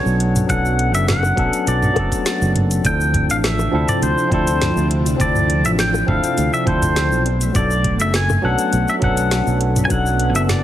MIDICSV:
0, 0, Header, 1, 6, 480
1, 0, Start_track
1, 0, Tempo, 588235
1, 402, Time_signature, 4, 2, 24, 8
1, 8679, End_track
2, 0, Start_track
2, 0, Title_t, "Pedal steel guitar"
2, 0, Program_c, 0, 26
2, 0, Note_on_c, 0, 73, 91
2, 128, Note_off_c, 0, 73, 0
2, 407, Note_on_c, 0, 78, 112
2, 770, Note_off_c, 0, 78, 0
2, 773, Note_on_c, 0, 76, 98
2, 877, Note_off_c, 0, 76, 0
2, 888, Note_on_c, 0, 78, 104
2, 1373, Note_on_c, 0, 74, 74
2, 1380, Note_off_c, 0, 78, 0
2, 2055, Note_off_c, 0, 74, 0
2, 2337, Note_on_c, 0, 79, 105
2, 2671, Note_off_c, 0, 79, 0
2, 2701, Note_on_c, 0, 77, 100
2, 2742, Note_off_c, 0, 77, 0
2, 2813, Note_on_c, 0, 76, 95
2, 3174, Note_on_c, 0, 74, 86
2, 3185, Note_off_c, 0, 76, 0
2, 3288, Note_off_c, 0, 74, 0
2, 3288, Note_on_c, 0, 72, 87
2, 3523, Note_off_c, 0, 72, 0
2, 3533, Note_on_c, 0, 72, 84
2, 3975, Note_off_c, 0, 72, 0
2, 4253, Note_on_c, 0, 74, 93
2, 4616, Note_on_c, 0, 76, 97
2, 4625, Note_off_c, 0, 74, 0
2, 4657, Note_off_c, 0, 76, 0
2, 4732, Note_on_c, 0, 79, 112
2, 4961, Note_off_c, 0, 79, 0
2, 4964, Note_on_c, 0, 77, 102
2, 5330, Note_off_c, 0, 77, 0
2, 5333, Note_on_c, 0, 76, 92
2, 5437, Note_off_c, 0, 76, 0
2, 5446, Note_on_c, 0, 72, 86
2, 5891, Note_off_c, 0, 72, 0
2, 6169, Note_on_c, 0, 74, 91
2, 6506, Note_off_c, 0, 74, 0
2, 6539, Note_on_c, 0, 76, 97
2, 6651, Note_off_c, 0, 76, 0
2, 6656, Note_on_c, 0, 80, 113
2, 6890, Note_off_c, 0, 80, 0
2, 6893, Note_on_c, 0, 78, 106
2, 7258, Note_on_c, 0, 76, 89
2, 7265, Note_off_c, 0, 78, 0
2, 7299, Note_off_c, 0, 76, 0
2, 7376, Note_on_c, 0, 78, 94
2, 7817, Note_off_c, 0, 78, 0
2, 8038, Note_on_c, 0, 80, 77
2, 8085, Note_off_c, 0, 80, 0
2, 8088, Note_on_c, 0, 78, 109
2, 8426, Note_off_c, 0, 78, 0
2, 8452, Note_on_c, 0, 76, 93
2, 8493, Note_off_c, 0, 76, 0
2, 8565, Note_on_c, 0, 74, 93
2, 8679, Note_off_c, 0, 74, 0
2, 8679, End_track
3, 0, Start_track
3, 0, Title_t, "Tine electric piano"
3, 0, Program_c, 1, 4
3, 0, Control_c, 1, 64, 127
3, 0, Note_on_c, 1, 54, 85
3, 0, Note_on_c, 1, 57, 67
3, 0, Note_on_c, 1, 59, 80
3, 0, Note_on_c, 1, 61, 80
3, 0, Note_on_c, 1, 62, 73
3, 0, Note_on_c, 1, 69, 90
3, 361, Note_off_c, 1, 54, 0
3, 368, Note_off_c, 1, 59, 0
3, 374, Note_off_c, 1, 61, 0
3, 376, Note_on_c, 1, 54, 74
3, 381, Note_off_c, 1, 62, 0
3, 387, Note_off_c, 1, 69, 0
3, 389, Note_on_c, 1, 59, 64
3, 402, Note_on_c, 1, 61, 63
3, 415, Note_on_c, 1, 62, 62
3, 428, Note_on_c, 1, 69, 78
3, 1082, Note_off_c, 1, 54, 0
3, 1089, Note_off_c, 1, 59, 0
3, 1095, Note_off_c, 1, 61, 0
3, 1102, Note_off_c, 1, 62, 0
3, 1107, Note_on_c, 1, 54, 84
3, 1108, Note_off_c, 1, 69, 0
3, 1115, Note_on_c, 1, 59, 74
3, 1123, Note_on_c, 1, 61, 80
3, 1127, Note_on_c, 1, 62, 82
3, 1135, Note_on_c, 1, 69, 94
3, 1294, Note_off_c, 1, 54, 0
3, 1298, Note_off_c, 1, 59, 0
3, 1302, Note_off_c, 1, 61, 0
3, 1304, Note_off_c, 1, 62, 0
3, 1308, Note_off_c, 1, 69, 0
3, 1577, Note_on_c, 1, 54, 82
3, 1588, Note_on_c, 1, 59, 75
3, 1602, Note_off_c, 1, 57, 0
3, 1602, Note_on_c, 1, 57, 75
3, 1615, Note_on_c, 1, 62, 78
3, 1627, Note_on_c, 1, 69, 93
3, 2282, Note_off_c, 1, 54, 0
3, 2288, Note_off_c, 1, 59, 0
3, 2295, Note_off_c, 1, 57, 0
3, 2296, Note_on_c, 1, 53, 71
3, 2301, Note_off_c, 1, 62, 0
3, 2308, Note_off_c, 1, 69, 0
3, 2309, Note_on_c, 1, 60, 62
3, 2322, Note_on_c, 1, 62, 66
3, 2331, Control_c, 1, 64, 0
3, 2334, Note_on_c, 1, 64, 63
3, 2348, Note_on_c, 1, 69, 77
3, 2468, Control_c, 1, 64, 127
3, 3002, Note_off_c, 1, 53, 0
3, 3008, Note_off_c, 1, 60, 0
3, 3015, Note_off_c, 1, 62, 0
3, 3021, Note_off_c, 1, 64, 0
3, 3028, Note_off_c, 1, 69, 0
3, 3031, Note_on_c, 1, 53, 86
3, 3037, Note_on_c, 1, 60, 83
3, 3043, Note_on_c, 1, 62, 83
3, 3050, Note_on_c, 1, 64, 77
3, 3056, Note_on_c, 1, 69, 101
3, 3216, Note_off_c, 1, 53, 0
3, 3219, Note_off_c, 1, 60, 0
3, 3222, Note_off_c, 1, 62, 0
3, 3226, Note_off_c, 1, 64, 0
3, 3229, Note_off_c, 1, 69, 0
3, 3495, Note_on_c, 1, 53, 80
3, 3507, Note_on_c, 1, 60, 75
3, 3520, Note_on_c, 1, 62, 80
3, 3533, Note_on_c, 1, 64, 79
3, 3546, Note_on_c, 1, 69, 97
3, 4201, Note_off_c, 1, 53, 0
3, 4207, Note_off_c, 1, 60, 0
3, 4214, Note_off_c, 1, 62, 0
3, 4214, Note_on_c, 1, 53, 75
3, 4221, Note_off_c, 1, 64, 0
3, 4227, Note_off_c, 1, 69, 0
3, 4227, Note_on_c, 1, 60, 69
3, 4239, Note_on_c, 1, 62, 62
3, 4252, Note_on_c, 1, 64, 61
3, 4264, Note_on_c, 1, 69, 75
3, 4921, Note_off_c, 1, 53, 0
3, 4927, Note_off_c, 1, 60, 0
3, 4933, Note_off_c, 1, 62, 0
3, 4940, Note_off_c, 1, 64, 0
3, 4946, Note_off_c, 1, 69, 0
3, 4946, Note_on_c, 1, 53, 88
3, 4954, Note_on_c, 1, 60, 81
3, 4960, Note_on_c, 1, 62, 78
3, 4966, Note_on_c, 1, 64, 77
3, 4973, Note_on_c, 1, 69, 99
3, 5134, Note_off_c, 1, 53, 0
3, 5137, Note_off_c, 1, 60, 0
3, 5141, Note_off_c, 1, 62, 0
3, 5144, Note_off_c, 1, 64, 0
3, 5147, Note_off_c, 1, 69, 0
3, 5430, Note_on_c, 1, 53, 87
3, 5437, Note_on_c, 1, 60, 80
3, 5443, Note_on_c, 1, 62, 78
3, 5450, Note_on_c, 1, 64, 75
3, 5457, Note_on_c, 1, 69, 94
3, 5903, Note_off_c, 1, 53, 0
3, 5906, Note_off_c, 1, 60, 0
3, 5909, Note_off_c, 1, 62, 0
3, 5912, Note_off_c, 1, 64, 0
3, 5916, Note_off_c, 1, 69, 0
3, 5935, Control_c, 1, 64, 0
3, 6078, Control_c, 1, 64, 127
3, 6136, Note_on_c, 1, 54, 75
3, 6150, Note_on_c, 1, 59, 62
3, 6161, Note_on_c, 1, 57, 64
3, 6174, Note_on_c, 1, 62, 63
3, 6188, Note_on_c, 1, 69, 83
3, 6842, Note_off_c, 1, 54, 0
3, 6849, Note_off_c, 1, 59, 0
3, 6855, Note_off_c, 1, 57, 0
3, 6861, Note_off_c, 1, 62, 0
3, 6868, Note_off_c, 1, 69, 0
3, 6869, Note_on_c, 1, 54, 91
3, 6876, Note_on_c, 1, 59, 78
3, 6882, Note_on_c, 1, 61, 80
3, 6888, Note_on_c, 1, 62, 82
3, 6895, Note_on_c, 1, 69, 100
3, 7055, Note_off_c, 1, 54, 0
3, 7059, Note_off_c, 1, 59, 0
3, 7062, Note_off_c, 1, 61, 0
3, 7065, Note_off_c, 1, 62, 0
3, 7068, Note_off_c, 1, 69, 0
3, 7336, Note_on_c, 1, 54, 91
3, 7348, Note_on_c, 1, 59, 79
3, 7360, Note_on_c, 1, 61, 82
3, 7374, Note_on_c, 1, 62, 79
3, 7385, Note_on_c, 1, 69, 99
3, 8042, Note_off_c, 1, 54, 0
3, 8048, Note_off_c, 1, 59, 0
3, 8054, Note_off_c, 1, 61, 0
3, 8056, Note_on_c, 1, 54, 75
3, 8061, Note_off_c, 1, 62, 0
3, 8067, Note_off_c, 1, 69, 0
3, 8068, Note_on_c, 1, 59, 66
3, 8080, Note_on_c, 1, 61, 64
3, 8094, Note_on_c, 1, 62, 69
3, 8105, Note_on_c, 1, 69, 80
3, 8679, Note_off_c, 1, 54, 0
3, 8679, Note_off_c, 1, 59, 0
3, 8679, Note_off_c, 1, 61, 0
3, 8679, Note_off_c, 1, 62, 0
3, 8679, Note_off_c, 1, 69, 0
3, 8679, End_track
4, 0, Start_track
4, 0, Title_t, "String machine"
4, 0, Program_c, 2, 50
4, 2323, Note_on_c, 2, 48, 79
4, 2323, Note_on_c, 2, 62, 89
4, 2326, Note_on_c, 2, 53, 73
4, 5890, Note_off_c, 2, 48, 0
4, 5890, Note_off_c, 2, 62, 0
4, 5891, Note_off_c, 2, 53, 0
4, 5921, Note_on_c, 2, 57, 69
4, 7823, Note_off_c, 2, 57, 0
4, 7847, Note_on_c, 2, 59, 74
4, 8679, Note_off_c, 2, 59, 0
4, 8679, End_track
5, 0, Start_track
5, 0, Title_t, "Fingered electric bass"
5, 0, Program_c, 3, 33
5, 46, Note_on_c, 3, 35, 78
5, 350, Note_off_c, 3, 35, 0
5, 404, Note_on_c, 3, 35, 97
5, 768, Note_off_c, 3, 35, 0
5, 768, Note_on_c, 3, 30, 95
5, 1071, Note_off_c, 3, 30, 0
5, 1122, Note_on_c, 3, 35, 80
5, 1213, Note_off_c, 3, 35, 0
5, 1364, Note_on_c, 3, 35, 97
5, 1540, Note_off_c, 3, 35, 0
5, 1602, Note_on_c, 3, 30, 88
5, 1693, Note_off_c, 3, 30, 0
5, 1971, Note_on_c, 3, 30, 89
5, 2273, Note_off_c, 3, 30, 0
5, 2322, Note_on_c, 3, 38, 100
5, 2688, Note_off_c, 3, 38, 0
5, 2688, Note_on_c, 3, 33, 92
5, 2991, Note_off_c, 3, 33, 0
5, 3041, Note_on_c, 3, 38, 81
5, 3132, Note_off_c, 3, 38, 0
5, 3281, Note_on_c, 3, 38, 79
5, 3373, Note_off_c, 3, 38, 0
5, 3522, Note_on_c, 3, 38, 70
5, 3832, Note_off_c, 3, 38, 0
5, 3884, Note_on_c, 3, 38, 83
5, 4189, Note_off_c, 3, 38, 0
5, 4243, Note_on_c, 3, 38, 93
5, 4607, Note_off_c, 3, 38, 0
5, 4607, Note_on_c, 3, 33, 92
5, 4911, Note_off_c, 3, 33, 0
5, 4961, Note_on_c, 3, 38, 85
5, 5053, Note_off_c, 3, 38, 0
5, 5204, Note_on_c, 3, 38, 85
5, 5294, Note_off_c, 3, 38, 0
5, 5441, Note_on_c, 3, 38, 70
5, 5810, Note_off_c, 3, 38, 0
5, 5810, Note_on_c, 3, 35, 85
5, 6112, Note_off_c, 3, 35, 0
5, 6161, Note_on_c, 3, 35, 101
5, 6529, Note_off_c, 3, 35, 0
5, 6529, Note_on_c, 3, 30, 95
5, 6831, Note_off_c, 3, 30, 0
5, 6883, Note_on_c, 3, 35, 81
5, 6974, Note_off_c, 3, 35, 0
5, 7123, Note_on_c, 3, 35, 84
5, 7213, Note_off_c, 3, 35, 0
5, 7363, Note_on_c, 3, 35, 72
5, 7672, Note_off_c, 3, 35, 0
5, 7726, Note_on_c, 3, 35, 80
5, 8030, Note_off_c, 3, 35, 0
5, 8082, Note_on_c, 3, 35, 94
5, 8447, Note_off_c, 3, 35, 0
5, 8447, Note_on_c, 3, 30, 99
5, 8679, Note_off_c, 3, 30, 0
5, 8679, End_track
6, 0, Start_track
6, 0, Title_t, "Drums"
6, 51, Note_on_c, 9, 82, 32
6, 133, Note_off_c, 9, 82, 0
6, 165, Note_on_c, 9, 42, 54
6, 246, Note_off_c, 9, 42, 0
6, 293, Note_on_c, 9, 42, 46
6, 293, Note_on_c, 9, 45, 79
6, 294, Note_on_c, 9, 82, 63
6, 374, Note_off_c, 9, 42, 0
6, 374, Note_off_c, 9, 45, 0
6, 375, Note_off_c, 9, 82, 0
6, 401, Note_on_c, 9, 36, 102
6, 404, Note_on_c, 9, 42, 55
6, 405, Note_on_c, 9, 82, 52
6, 483, Note_off_c, 9, 36, 0
6, 486, Note_off_c, 9, 42, 0
6, 487, Note_off_c, 9, 82, 0
6, 533, Note_on_c, 9, 82, 32
6, 615, Note_off_c, 9, 82, 0
6, 645, Note_on_c, 9, 42, 57
6, 727, Note_off_c, 9, 42, 0
6, 772, Note_on_c, 9, 42, 44
6, 773, Note_on_c, 9, 82, 63
6, 853, Note_off_c, 9, 42, 0
6, 854, Note_off_c, 9, 82, 0
6, 885, Note_on_c, 9, 38, 108
6, 885, Note_on_c, 9, 42, 33
6, 885, Note_on_c, 9, 45, 89
6, 886, Note_on_c, 9, 82, 57
6, 966, Note_off_c, 9, 38, 0
6, 966, Note_off_c, 9, 42, 0
6, 966, Note_off_c, 9, 45, 0
6, 967, Note_off_c, 9, 82, 0
6, 1003, Note_on_c, 9, 60, 59
6, 1013, Note_on_c, 9, 82, 29
6, 1085, Note_off_c, 9, 60, 0
6, 1095, Note_off_c, 9, 82, 0
6, 1121, Note_on_c, 9, 36, 101
6, 1124, Note_on_c, 9, 42, 34
6, 1203, Note_off_c, 9, 36, 0
6, 1206, Note_off_c, 9, 42, 0
6, 1251, Note_on_c, 9, 42, 44
6, 1252, Note_on_c, 9, 82, 63
6, 1333, Note_off_c, 9, 42, 0
6, 1334, Note_off_c, 9, 82, 0
6, 1365, Note_on_c, 9, 42, 57
6, 1366, Note_on_c, 9, 82, 54
6, 1446, Note_off_c, 9, 42, 0
6, 1447, Note_off_c, 9, 82, 0
6, 1489, Note_on_c, 9, 45, 83
6, 1490, Note_on_c, 9, 82, 32
6, 1571, Note_off_c, 9, 45, 0
6, 1572, Note_off_c, 9, 82, 0
6, 1599, Note_on_c, 9, 60, 86
6, 1601, Note_on_c, 9, 36, 102
6, 1604, Note_on_c, 9, 42, 32
6, 1681, Note_off_c, 9, 60, 0
6, 1683, Note_off_c, 9, 36, 0
6, 1686, Note_off_c, 9, 42, 0
6, 1728, Note_on_c, 9, 36, 55
6, 1731, Note_on_c, 9, 42, 46
6, 1732, Note_on_c, 9, 82, 60
6, 1810, Note_off_c, 9, 36, 0
6, 1813, Note_off_c, 9, 42, 0
6, 1814, Note_off_c, 9, 82, 0
6, 1844, Note_on_c, 9, 38, 106
6, 1844, Note_on_c, 9, 42, 61
6, 1844, Note_on_c, 9, 82, 57
6, 1925, Note_off_c, 9, 38, 0
6, 1925, Note_off_c, 9, 42, 0
6, 1926, Note_off_c, 9, 82, 0
6, 1972, Note_on_c, 9, 82, 34
6, 2053, Note_off_c, 9, 82, 0
6, 2085, Note_on_c, 9, 42, 51
6, 2085, Note_on_c, 9, 45, 83
6, 2167, Note_off_c, 9, 42, 0
6, 2167, Note_off_c, 9, 45, 0
6, 2211, Note_on_c, 9, 42, 43
6, 2212, Note_on_c, 9, 82, 65
6, 2292, Note_off_c, 9, 42, 0
6, 2293, Note_off_c, 9, 82, 0
6, 2322, Note_on_c, 9, 36, 108
6, 2323, Note_on_c, 9, 42, 62
6, 2324, Note_on_c, 9, 82, 52
6, 2404, Note_off_c, 9, 36, 0
6, 2404, Note_off_c, 9, 42, 0
6, 2405, Note_off_c, 9, 82, 0
6, 2452, Note_on_c, 9, 82, 37
6, 2534, Note_off_c, 9, 82, 0
6, 2562, Note_on_c, 9, 36, 63
6, 2565, Note_on_c, 9, 42, 61
6, 2565, Note_on_c, 9, 45, 81
6, 2644, Note_off_c, 9, 36, 0
6, 2647, Note_off_c, 9, 42, 0
6, 2647, Note_off_c, 9, 45, 0
6, 2693, Note_on_c, 9, 42, 46
6, 2694, Note_on_c, 9, 82, 64
6, 2774, Note_off_c, 9, 42, 0
6, 2775, Note_off_c, 9, 82, 0
6, 2807, Note_on_c, 9, 38, 111
6, 2807, Note_on_c, 9, 42, 34
6, 2808, Note_on_c, 9, 82, 57
6, 2889, Note_off_c, 9, 38, 0
6, 2889, Note_off_c, 9, 42, 0
6, 2890, Note_off_c, 9, 82, 0
6, 2929, Note_on_c, 9, 60, 63
6, 2932, Note_on_c, 9, 82, 33
6, 3011, Note_off_c, 9, 60, 0
6, 3014, Note_off_c, 9, 82, 0
6, 3170, Note_on_c, 9, 42, 47
6, 3170, Note_on_c, 9, 45, 79
6, 3171, Note_on_c, 9, 82, 67
6, 3252, Note_off_c, 9, 42, 0
6, 3252, Note_off_c, 9, 45, 0
6, 3253, Note_off_c, 9, 82, 0
6, 3285, Note_on_c, 9, 42, 55
6, 3286, Note_on_c, 9, 82, 58
6, 3366, Note_off_c, 9, 42, 0
6, 3367, Note_off_c, 9, 82, 0
6, 3411, Note_on_c, 9, 82, 35
6, 3492, Note_off_c, 9, 82, 0
6, 3522, Note_on_c, 9, 36, 109
6, 3525, Note_on_c, 9, 42, 32
6, 3603, Note_off_c, 9, 36, 0
6, 3607, Note_off_c, 9, 42, 0
6, 3650, Note_on_c, 9, 42, 50
6, 3651, Note_on_c, 9, 82, 66
6, 3732, Note_off_c, 9, 42, 0
6, 3733, Note_off_c, 9, 82, 0
6, 3766, Note_on_c, 9, 38, 104
6, 3766, Note_on_c, 9, 42, 59
6, 3766, Note_on_c, 9, 45, 79
6, 3767, Note_on_c, 9, 82, 55
6, 3848, Note_off_c, 9, 38, 0
6, 3848, Note_off_c, 9, 42, 0
6, 3848, Note_off_c, 9, 45, 0
6, 3849, Note_off_c, 9, 82, 0
6, 3892, Note_on_c, 9, 82, 35
6, 3974, Note_off_c, 9, 82, 0
6, 4005, Note_on_c, 9, 42, 53
6, 4086, Note_off_c, 9, 42, 0
6, 4131, Note_on_c, 9, 42, 45
6, 4132, Note_on_c, 9, 82, 64
6, 4213, Note_off_c, 9, 42, 0
6, 4214, Note_off_c, 9, 82, 0
6, 4242, Note_on_c, 9, 36, 114
6, 4245, Note_on_c, 9, 42, 57
6, 4246, Note_on_c, 9, 82, 55
6, 4324, Note_off_c, 9, 36, 0
6, 4327, Note_off_c, 9, 42, 0
6, 4328, Note_off_c, 9, 82, 0
6, 4369, Note_on_c, 9, 45, 80
6, 4370, Note_on_c, 9, 82, 34
6, 4451, Note_off_c, 9, 45, 0
6, 4452, Note_off_c, 9, 82, 0
6, 4486, Note_on_c, 9, 42, 57
6, 4567, Note_off_c, 9, 42, 0
6, 4610, Note_on_c, 9, 42, 42
6, 4611, Note_on_c, 9, 82, 63
6, 4692, Note_off_c, 9, 42, 0
6, 4693, Note_off_c, 9, 82, 0
6, 4723, Note_on_c, 9, 38, 109
6, 4723, Note_on_c, 9, 42, 33
6, 4724, Note_on_c, 9, 82, 61
6, 4805, Note_off_c, 9, 38, 0
6, 4805, Note_off_c, 9, 42, 0
6, 4806, Note_off_c, 9, 82, 0
6, 4849, Note_on_c, 9, 60, 66
6, 4851, Note_on_c, 9, 82, 35
6, 4930, Note_off_c, 9, 60, 0
6, 4933, Note_off_c, 9, 82, 0
6, 4961, Note_on_c, 9, 36, 96
6, 4963, Note_on_c, 9, 45, 81
6, 5043, Note_off_c, 9, 36, 0
6, 5045, Note_off_c, 9, 45, 0
6, 5089, Note_on_c, 9, 42, 43
6, 5090, Note_on_c, 9, 82, 69
6, 5171, Note_off_c, 9, 42, 0
6, 5172, Note_off_c, 9, 82, 0
6, 5203, Note_on_c, 9, 42, 54
6, 5204, Note_on_c, 9, 82, 59
6, 5285, Note_off_c, 9, 42, 0
6, 5285, Note_off_c, 9, 82, 0
6, 5332, Note_on_c, 9, 82, 36
6, 5413, Note_off_c, 9, 82, 0
6, 5442, Note_on_c, 9, 36, 118
6, 5443, Note_on_c, 9, 42, 32
6, 5523, Note_off_c, 9, 36, 0
6, 5525, Note_off_c, 9, 42, 0
6, 5568, Note_on_c, 9, 36, 64
6, 5569, Note_on_c, 9, 42, 44
6, 5569, Note_on_c, 9, 45, 78
6, 5570, Note_on_c, 9, 82, 73
6, 5649, Note_off_c, 9, 36, 0
6, 5651, Note_off_c, 9, 42, 0
6, 5651, Note_off_c, 9, 45, 0
6, 5652, Note_off_c, 9, 82, 0
6, 5682, Note_on_c, 9, 38, 113
6, 5682, Note_on_c, 9, 42, 56
6, 5683, Note_on_c, 9, 82, 60
6, 5764, Note_off_c, 9, 38, 0
6, 5764, Note_off_c, 9, 42, 0
6, 5765, Note_off_c, 9, 82, 0
6, 5810, Note_on_c, 9, 82, 34
6, 5891, Note_off_c, 9, 82, 0
6, 5922, Note_on_c, 9, 42, 52
6, 6004, Note_off_c, 9, 42, 0
6, 6047, Note_on_c, 9, 42, 45
6, 6048, Note_on_c, 9, 82, 68
6, 6129, Note_off_c, 9, 42, 0
6, 6130, Note_off_c, 9, 82, 0
6, 6160, Note_on_c, 9, 36, 118
6, 6160, Note_on_c, 9, 42, 51
6, 6160, Note_on_c, 9, 45, 78
6, 6161, Note_on_c, 9, 82, 60
6, 6242, Note_off_c, 9, 36, 0
6, 6242, Note_off_c, 9, 42, 0
6, 6242, Note_off_c, 9, 45, 0
6, 6243, Note_off_c, 9, 82, 0
6, 6287, Note_on_c, 9, 82, 38
6, 6368, Note_off_c, 9, 82, 0
6, 6401, Note_on_c, 9, 36, 65
6, 6401, Note_on_c, 9, 42, 53
6, 6482, Note_off_c, 9, 36, 0
6, 6482, Note_off_c, 9, 42, 0
6, 6525, Note_on_c, 9, 42, 42
6, 6526, Note_on_c, 9, 82, 66
6, 6607, Note_off_c, 9, 42, 0
6, 6608, Note_off_c, 9, 82, 0
6, 6641, Note_on_c, 9, 38, 108
6, 6641, Note_on_c, 9, 42, 33
6, 6642, Note_on_c, 9, 82, 65
6, 6722, Note_off_c, 9, 38, 0
6, 6722, Note_off_c, 9, 42, 0
6, 6723, Note_off_c, 9, 82, 0
6, 6767, Note_on_c, 9, 45, 76
6, 6768, Note_on_c, 9, 82, 33
6, 6770, Note_on_c, 9, 60, 68
6, 6848, Note_off_c, 9, 45, 0
6, 6849, Note_off_c, 9, 82, 0
6, 6852, Note_off_c, 9, 60, 0
6, 7006, Note_on_c, 9, 42, 42
6, 7007, Note_on_c, 9, 82, 73
6, 7087, Note_off_c, 9, 42, 0
6, 7088, Note_off_c, 9, 82, 0
6, 7120, Note_on_c, 9, 42, 53
6, 7121, Note_on_c, 9, 82, 57
6, 7202, Note_off_c, 9, 42, 0
6, 7203, Note_off_c, 9, 82, 0
6, 7247, Note_on_c, 9, 82, 37
6, 7328, Note_off_c, 9, 82, 0
6, 7358, Note_on_c, 9, 42, 29
6, 7358, Note_on_c, 9, 45, 70
6, 7361, Note_on_c, 9, 36, 116
6, 7440, Note_off_c, 9, 42, 0
6, 7440, Note_off_c, 9, 45, 0
6, 7442, Note_off_c, 9, 36, 0
6, 7485, Note_on_c, 9, 42, 44
6, 7486, Note_on_c, 9, 82, 67
6, 7566, Note_off_c, 9, 42, 0
6, 7568, Note_off_c, 9, 82, 0
6, 7600, Note_on_c, 9, 38, 102
6, 7600, Note_on_c, 9, 42, 58
6, 7601, Note_on_c, 9, 82, 58
6, 7682, Note_off_c, 9, 38, 0
6, 7682, Note_off_c, 9, 42, 0
6, 7683, Note_off_c, 9, 82, 0
6, 7727, Note_on_c, 9, 82, 34
6, 7808, Note_off_c, 9, 82, 0
6, 7839, Note_on_c, 9, 42, 51
6, 7920, Note_off_c, 9, 42, 0
6, 7966, Note_on_c, 9, 42, 43
6, 7966, Note_on_c, 9, 45, 79
6, 7967, Note_on_c, 9, 82, 65
6, 8048, Note_off_c, 9, 42, 0
6, 8048, Note_off_c, 9, 45, 0
6, 8049, Note_off_c, 9, 82, 0
6, 8080, Note_on_c, 9, 42, 55
6, 8081, Note_on_c, 9, 36, 118
6, 8081, Note_on_c, 9, 82, 60
6, 8162, Note_off_c, 9, 36, 0
6, 8162, Note_off_c, 9, 42, 0
6, 8163, Note_off_c, 9, 82, 0
6, 8208, Note_on_c, 9, 82, 35
6, 8290, Note_off_c, 9, 82, 0
6, 8319, Note_on_c, 9, 42, 54
6, 8401, Note_off_c, 9, 42, 0
6, 8448, Note_on_c, 9, 42, 37
6, 8449, Note_on_c, 9, 82, 66
6, 8529, Note_off_c, 9, 42, 0
6, 8530, Note_off_c, 9, 82, 0
6, 8562, Note_on_c, 9, 38, 97
6, 8562, Note_on_c, 9, 42, 32
6, 8562, Note_on_c, 9, 45, 78
6, 8563, Note_on_c, 9, 82, 62
6, 8644, Note_off_c, 9, 38, 0
6, 8644, Note_off_c, 9, 42, 0
6, 8644, Note_off_c, 9, 45, 0
6, 8645, Note_off_c, 9, 82, 0
6, 8679, End_track
0, 0, End_of_file